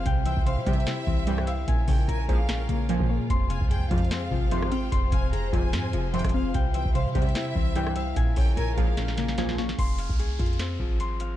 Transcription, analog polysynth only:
\new Staff \with { instrumentName = "Analog polysynth" } { \clef bass \time 4/4 \key f \minor \tempo 4 = 148 r4. <g,, e, c>16 r4 r16 <c, g, e>8 r8 | r4. <des, bes, f>16 r4 r16 <des, bes, f>8 r8 | r4. <aes,, f, c>16 r4 r16 <aes,, f, c>8 r8 | r4. <aes,, f, c>16 r4 r16 <aes,, f, c>8 r8 |
r4. <g,, e, c>16 r4 r16 <c, g, e>8 r8 | r4. <des, bes, f>16 r4 r16 <des, bes, f>8 r8 | r1 | }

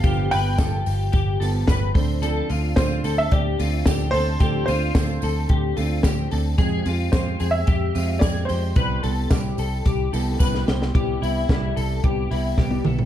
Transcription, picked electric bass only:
\new Staff \with { instrumentName = "Picked electric bass" } { \clef bass \time 4/4 \key c \major \tempo 4 = 110 g,,8 g,,8 g,,8 g,,8 g,,8 g,,8 g,,8 d,8~ | d,8 d,8 d,8 d,8 d,8 d,8 d,8 d,8 | d,8 d,8 d,8 d,8 d,8 d,8 d,8 d,8 | f,8 f,8 f,8 f,8 f,8 f,8 f,8 f,8 |
c,8 c,8 c,8 c,8 c,8 c,8 c,8 c,8 | c,8 c,8 c,8 c,8 c,8 c,8 c,8 b,,8 | }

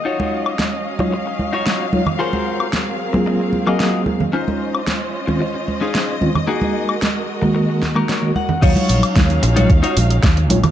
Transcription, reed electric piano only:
\new Staff \with { instrumentName = "Reed electric piano" } { \time 4/4 \key ees \dorian \tempo 4 = 112 r4. r16 <ges ees' f' des''>16 r4. <ges ees' f' des''>16 r16 | r4. r16 <ges bes c' f' aes'>4 <ges bes c' aes' f''>4~ <ges bes c' aes' f''>16 | r4. r16 <ees c' des' f'>16 r4. <ees c' des' f'>16 r16 | r4. r16 <ees aes bes ges'>4 <ees aes bes ges'>16 r16 <ees aes bes ges'>16 r8 |
<ges ees' des'' f''>4. r16 <ges ees' f' des''>16 r4. <ges ees' f' des''>16 r16 | }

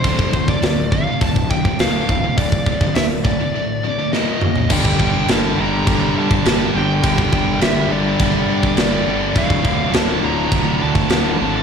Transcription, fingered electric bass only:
\new Staff \with { instrumentName = "Fingered electric bass" } { \clef bass \time 4/4 \key g \dorian \tempo 4 = 103 d,,8 d,,8 d,,4 d,,4 d,,8 d,,8 | d,,8 d,,8 d,,4 r2 | g,,8 g,,8 g,,8 g,,8 g,,8 g,8 g,,8 g,,8 | g,,8 g,,8 g,,8 g,,8 g,,8 g,8 g,,8 g,,8 |
d,,8 d,,8 d,,8 d,,8 d,,8 d,8 d,,8 gis,,8 | }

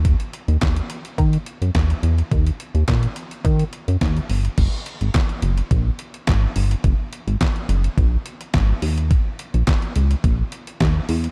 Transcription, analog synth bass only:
\new Staff \with { instrumentName = "Analog synth bass" } { \clef bass \time 4/4 \key fis \major \tempo 4 = 106 dis,8 r16 dis,16 dis,8 r8 dis8 r16 fis,16 dis,8 e,8 | dis,8 r16 dis,16 ais,8 r8 dis8 r16 fis,16 dis,8 g,,8 | fis,,16 r8 gis,,16 r8 fis,,8 ais,,8 r8 gis,,8 g,,8 | fis,,16 r8 gis,,16 r8 fis,,8 ais,,8 r8 gis,,8 dis,8~ |
dis,16 r8 ais,,16 r8 cis,8 ais,,8 r8 dis,8 e,8 | }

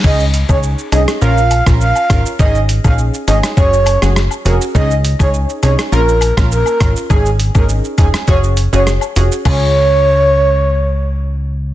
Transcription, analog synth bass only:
\new Staff \with { instrumentName = "Analog synth bass" } { \clef bass \time 4/4 \key des \major \tempo 4 = 102 des,8. des,8 r16 c,16 r16 bes,,8. bes,,8 r16 aes,,16 r16 | aes,,8. bes,,8 r16 aes,,16 r16 ges,,8. ges,,8 r16 f,,16 r16 | des,8. des,8 r16 c,16 r16 bes,,8. bes,,8 r16 aes,,16 r16 | aes,,8. aes,,8 r16 f,,16 r16 ges,,8. ges,,8 r16 f,,16 r16 |
des,1 | }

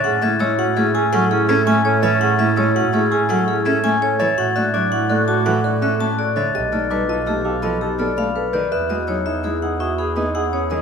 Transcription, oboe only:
\new Staff \with { instrumentName = "Oboe" } { \time 6/4 \key a \major \tempo 4 = 166 cis'8 cis'8 cis'8 cis'8 cis'8 cis'8 cis'8 cis'8 cis'8 cis'8 cis'8 cis'8 | cis'8 cis'8 cis'8 cis'8 cis'8 cis'8 cis'8 cis'8 cis'8 cis'8 cis'8 r8 | fis'8 fis'8 fis'8 fis'8 fis'8 fis'8 fis'8 fis'8 fis'8 fis'8 fis'8 r8 | a'8 a'8 a'8 a'8 a'8 a'8 a'8 a'8 a'8 a'8 a'8 r8 |
\key e \major gis'8 gis'8 gis'8 gis'8 gis'8 gis'8 gis'8 gis'8 gis'8 gis'8 gis'8 gis'8 | }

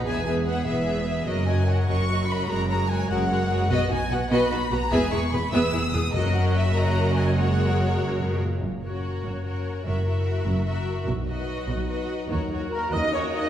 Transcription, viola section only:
\new Staff \with { instrumentName = "Viola section" } { \time 6/8 \key fis \mixolydian \tempo 4. = 98 <b gis'>8 <b gis'>8 <b gis'>8 <b gis'>8 <b gis'>8 <b gis'>8 | <fis fis'>8 <fis fis'>8 <fis fis'>8 <fis fis'>8 <fis fis'>8 <fis fis'>8 | <gis fis'>8 <gis fis'>8 <gis fis'>8 <gis fis'>8 <gis fis'>8 <gis fis'>8 | <b fis'>8 <b fis'>8 <b fis'>8 <b fis'>8 <b fis'>8 <b fis'>8 |
<b gis'>8 <b gis'>8 <b gis'>8 <b gis'>8 <b gis'>8 <b gis'>8 | <fis fis'>4. <fis fis'>4. | <gis fis'>2~ <gis fis'>8 r8 | \key fis \major r8 fis'4. fis'4 |
fis'8 fis'4. fis'4 | r8 fis'4. fis'4 | fis'8 fis'4. fis'4 | }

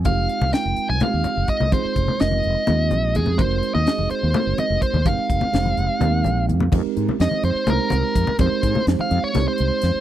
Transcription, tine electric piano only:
\new Staff \with { instrumentName = "Tine electric piano" } { \time 7/8 \key f \minor \tempo 4 = 126 << { r2. r8 | r2. r8 | r2. r8 | r2 r8 g''8 f''8 |
r2. r8 | r2. r8 | } \\ { <aes c' ees' f' g'>4 <aes c' ees' f' bes'>4 <aes c' ees' f' g'>4. | <aes c' ees' f' aes'>4 <aes c' ees' f' bes'>4 <aes c' ees' f' g'>4. | <aes c' ees' ges' bes'>4 <aes c' ees' ges' aes'>4 <aes c' ees' ges' bes'>4. | <aes c' ees' g' bes'>4 <aes c' ees' g' c''>4 <aes c' ees' g' bes'>4. |
<aes c' ees' g' bes'>4 <aes c' ees' g' c''>4 <aes c' ees' g' c''>4. | <aes c' ees' g' bes'>4 <aes c' ees' g' c''>4 <aes c' ees' g' c''>4. | } >> }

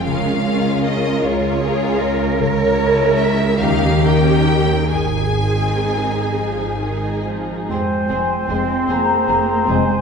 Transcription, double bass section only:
\new Staff \with { instrumentName = "Double bass section" } { \clef bass \time 6/8 \key aes \major \tempo 4. = 50 des,4. des,4. | des,4. ees,4. | aes,,4. aes,,4. | \key f \minor f,,8 f,,8 f,,8 f,,8 f,,8 f,,8 | }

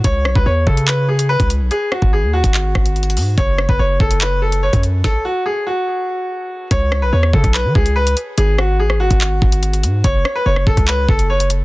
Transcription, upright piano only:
\new Staff \with { instrumentName = "Upright piano" } { \time 4/4 \key cis \minor \tempo 4 = 144 cis''8. b'16 cis''8 a'8 b'8 gis'8 b'8 r8 | gis'8 fis'8 gis'8 fis'2~ fis'8 | cis''8. b'16 cis''8 a'8 b'8 a'8 cis''8 r8 | a'8 fis'8 gis'8 fis'2~ fis'8 |
cis''8. b'16 cis''8 a'8 b'8 gis'8 b'8 r8 | gis'8 fis'8 gis'8 fis'2~ fis'8 | cis''8. b'16 cis''8 a'8 b'8 a'8 cis''8 r8 | }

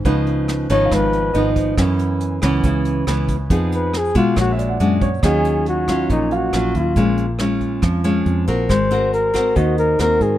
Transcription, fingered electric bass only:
\new Staff \with { instrumentName = "Fingered electric bass" } { \clef bass \time 4/4 \key cis \dorian \tempo 4 = 139 cis,4. gis,,8 gis,,4 gis,,4 | fis,4. cis,8 cis,4 cis,4 | f,4. ces8 ais,,4 fis,4 | \key ees \minor ees,2 bes,,4 bes,,8 ees,8 |
bes,,2 f,4 f,8 bes,,8 | aes,,2 ees,4 ees,8 aes,8 | }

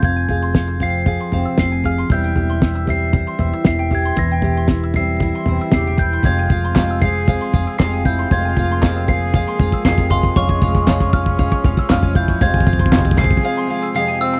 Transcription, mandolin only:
\new Staff \with { instrumentName = "Mandolin" } { \time 4/4 \key f \minor \tempo 4 = 116 <f'' aes'' c'''>16 aes''16 f''16 c'''16 f''16 e'''16 f''8 f''16 c'''16 f''16 e'''16 f''16 aes''16 f''16 c'''16 | e''16 g''16 e''16 c'''16 e''16 e'''16 e''8 e''16 c'''16 e''16 e'''16 e''16 g''16 e''16 c'''16 | e''16 g''16 e''16 c'''16 e''16 e'''16 e''8 e''16 c'''16 e''16 e'''16 e''16 g''16 e''16 c'''16 | f''16 aes''16 f''16 c'''16 f''16 e'''16 f''8 f''16 c'''16 f''16 e'''16 f''16 aes''16 f''16 c'''16 |
f''16 aes''16 f''16 c'''16 f''16 e'''16 f''8 f''16 c'''16 f''16 e'''16 f''16 aes''16 f''16 c'''16 | f''16 aes''16 f''16 des'''16 f''16 des'''16 f''8 f''16 des'''16 f''16 e'''16 f''16 aes''16 f''16 des'''16 | f''16 aes''16 f''16 c'''16 f''16 e'''16 f''8 f''16 c'''16 f''16 e'''16 f''16 aes''16 f''16 c'''16 | }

